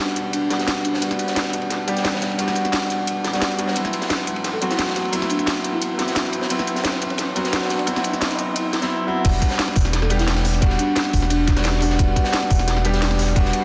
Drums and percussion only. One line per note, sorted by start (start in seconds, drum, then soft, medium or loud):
0.16 closed hi-hat medium
0.16 ride medium
0.33 closed hi-hat medium
0.33 ride medium
0.50 snare soft
0.50 closed hi-hat medium
0.50 ride medium
0.59 snare soft
0.59 closed hi-hat soft
0.67 snare loud
0.67 closed hi-hat medium
0.67 ride medium
0.85 closed hi-hat medium
0.85 ride medium
0.94 snare soft
1.02 closed hi-hat medium
1.02 ride medium
1.11 snare soft
1.11 closed hi-hat soft
1.19 closed hi-hat medium
1.19 ride medium
1.28 snare soft
1.28 closed hi-hat soft
1.36 snare loud
1.36 closed hi-hat medium
1.36 ride medium
1.53 closed hi-hat medium
1.53 ride medium
1.62 ride soft
1.70 snare soft
1.70 closed hi-hat medium
1.70 ride medium
1.88 closed hi-hat medium
1.88 ride medium
1.97 snare soft
1.97 closed hi-hat soft
2.05 snare loud
2.05 closed hi-hat medium
2.05 ride medium
2.14 snare medium
2.22 snare medium
2.22 closed hi-hat medium
2.22 ride medium
2.31 ride soft
2.39 closed hi-hat medium
2.39 ride medium
2.48 snare soft
2.48 closed hi-hat soft
2.55 closed hi-hat medium
2.55 ride medium
2.65 snare soft
2.65 closed hi-hat soft
2.72 snare loud
2.72 closed hi-hat medium
2.72 ride medium
2.90 closed hi-hat medium
2.90 ride medium
3.07 closed hi-hat medium
3.07 ride medium
3.24 snare soft
3.24 closed hi-hat medium
3.24 ride medium
3.33 snare soft
3.33 closed hi-hat soft
3.42 snare loud
3.42 closed hi-hat medium
3.42 ride medium
3.59 closed hi-hat medium
3.59 ride medium
3.68 snare medium
3.76 closed hi-hat medium
3.76 ride medium
3.85 snare soft
3.85 closed hi-hat soft
3.93 closed hi-hat medium
3.93 ride medium
4.02 snare medium
4.02 closed hi-hat soft
4.10 snare loud
4.10 closed hi-hat medium
4.10 ride medium
4.27 closed hi-hat medium
4.27 ride medium
4.36 ride soft
4.44 snare soft
4.44 closed hi-hat medium
4.44 ride medium
4.62 closed hi-hat medium
4.62 ride medium
4.71 snare medium
4.71 closed hi-hat soft
4.79 snare loud
4.79 closed hi-hat medium
4.79 ride medium
4.87 snare medium
4.95 snare medium
4.95 closed hi-hat medium
4.95 ride medium
5.05 ride soft
5.13 closed hi-hat medium
5.13 ride loud
5.22 snare soft
5.22 closed hi-hat soft
5.29 closed hi-hat medium
5.29 ride medium
5.39 snare soft
5.39 closed hi-hat soft
5.47 snare loud
5.47 closed hi-hat medium
5.47 ride medium
5.64 closed hi-hat medium
5.64 ride medium
5.82 closed hi-hat medium
5.82 ride medium
5.99 snare soft
5.99 closed hi-hat medium
5.99 ride medium
6.07 snare soft
6.07 closed hi-hat soft
6.15 snare loud
6.15 closed hi-hat medium
6.15 ride medium
6.33 closed hi-hat medium
6.33 ride medium
6.41 snare medium
6.50 closed hi-hat loud
6.50 ride loud
6.59 snare medium
6.59 closed hi-hat soft
6.67 closed hi-hat medium
6.67 ride medium
6.76 snare medium
6.76 closed hi-hat soft
6.84 snare loud
6.84 closed hi-hat loud
6.84 ride loud
7.02 closed hi-hat medium
7.02 ride medium
7.10 ride soft
7.18 snare soft
7.18 closed hi-hat loud
7.18 ride medium
7.36 closed hi-hat medium
7.36 ride medium
7.45 snare soft
7.45 closed hi-hat soft
7.53 snare loud
7.53 closed hi-hat medium
7.53 ride medium
7.62 snare medium
7.70 snare soft
7.70 closed hi-hat medium
7.70 ride medium
7.79 ride soft
7.87 closed hi-hat loud
7.87 ride loud
7.96 snare soft
7.96 snare medium
7.96 closed hi-hat soft
8.04 closed hi-hat medium
8.04 ride medium
8.13 snare soft
8.13 closed hi-hat soft
8.21 snare loud
8.21 closed hi-hat loud
8.21 ride medium
8.31 closed hi-hat soft
8.38 closed hi-hat medium
8.38 ride medium
8.56 closed hi-hat loud
8.56 ride medium
8.73 snare soft
8.73 closed hi-hat medium
8.73 ride medium
8.82 snare soft
8.82 closed hi-hat soft
9.25 kick loud
9.25 closed hi-hat medium
9.25 crash loud
9.25 ride medium
9.42 kick medium
9.42 closed hi-hat medium
9.42 ride medium
9.51 snare soft
9.59 snare loud
9.59 closed hi-hat medium
9.59 ride medium
9.68 snare soft
9.75 kick loud
9.75 open hi-hat medium
9.75 ride medium
9.85 snare soft
9.85 ride soft
9.93 snare soft
9.93 closed hi-hat loud
9.93 ride medium
10.02 snare soft
10.10 closed hi-hat medium
10.10 ride medium
10.19 snare soft
10.19 closed hi-hat soft
10.28 snare loud
10.28 closed hi-hat medium
10.28 ride medium
10.36 snare medium
10.36 snare soft
10.44 snare medium
10.44 open hi-hat medium
10.44 ride medium
10.54 ride soft
10.62 kick loud
10.62 closed hi-hat medium
10.62 ride medium
10.70 snare soft
10.79 closed hi-hat medium
10.79 ride medium
10.96 snare loud
10.96 closed hi-hat medium
10.96 ride medium
11.05 snare soft
11.13 kick medium
11.13 open hi-hat medium
11.13 ride medium
11.22 snare soft
11.30 closed hi-hat medium
11.30 ride medium
11.47 kick loud
11.47 snare soft
11.47 closed hi-hat medium
11.47 ride medium
11.57 snare soft
11.57 closed hi-hat soft
11.64 snare loud
11.64 closed hi-hat medium
11.64 ride medium
11.80 open hi-hat medium
11.80 ride medium
11.90 snare medium
11.99 kick loud
11.99 closed hi-hat medium
11.99 ride medium
12.16 kick medium
12.16 closed hi-hat medium
12.16 ride medium
12.24 snare medium
12.33 snare loud
12.33 closed hi-hat medium
12.33 ride medium
12.42 snare soft
12.50 kick loud
12.50 open hi-hat medium
12.50 ride medium
12.59 snare soft
12.59 ride soft
12.68 snare soft
12.68 closed hi-hat medium
12.68 ride medium
12.77 snare soft
12.85 closed hi-hat medium
12.85 ride medium
12.94 snare soft
12.94 closed hi-hat soft
13.02 snare loud
13.02 closed hi-hat medium
13.02 ride medium
13.11 snare medium
13.11 snare soft
13.19 snare medium
13.19 open hi-hat medium
13.19 ride medium
13.28 ride soft
13.36 kick loud
13.36 closed hi-hat medium
13.36 ride loud
13.45 snare soft
13.53 closed hi-hat medium
13.53 ride medium